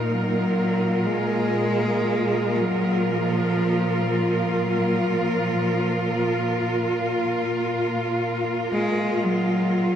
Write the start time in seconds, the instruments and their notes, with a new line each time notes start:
Already playing: cello section A#2 D#4 F4 A#4
0.08 cello F#3
1.06 cello G#3
2.55 cello G#3
2.60 cello F#3
3.10 cello F3
4.11 cello F3
4.63 cello F#3
5.14 cello F3
6.16 cello F3
8.72 cello G#3
9.23 cello F#3